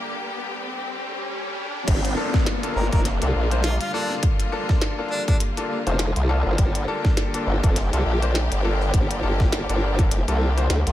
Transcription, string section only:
0.00 1.84 D3 medium
0.00 1.84 G3 medium
0.00 1.84 A#3 medium
0.00 1.84 G4 medium
1.88 10.92 D3 medium
1.88 10.92 G3 medium
1.88 10.92 A#3 medium
1.88 6.58 F4 medium
6.59 10.92 G4 medium

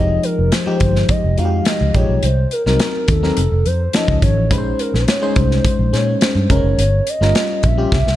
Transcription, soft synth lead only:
0.00 0.25 D#5 medium
0.24 0.53 A#4 medium
0.52 1.12 C5 loud
1.10 1.39 D#5 medium
1.38 1.68 F5 loud
1.67 1.97 D#5 medium
1.95 2.26 C#5 loud
2.24 2.54 C5 medium
2.52 2.66 A#4 medium
2.66 3.11 A#4 medium
3.10 3.68 A4 loud
3.66 3.96 C5 medium
3.94 4.22 D#5 medium
4.22 4.53 C#5 medium
4.52 4.81 C5 medium
4.80 4.95 A#4 medium
4.94 5.39 C#5 medium
5.37 5.96 C5 loud
5.94 6.24 C#5 medium
6.23 6.53 C5 medium
6.52 7.10 C#5 loud
7.09 7.67 D#5 loud
7.66 8.16 E5 medium

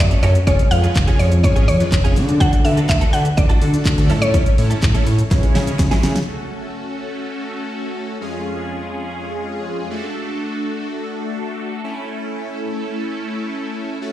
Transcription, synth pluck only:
0.00 0.24 D5 loud
0.23 0.46 C#5 medium
0.47 0.70 C#5 loud
0.71 1.21 F5 loud
1.19 1.43 C#5 medium
1.44 1.67 C#5 medium
1.68 2.43 C#5 medium
2.40 2.65 F#5 loud
2.65 2.76 E5 medium
2.89 3.14 E5 medium
3.13 3.38 F#5 medium
3.37 3.94 D5 medium
4.22 5.15 C#5 loud

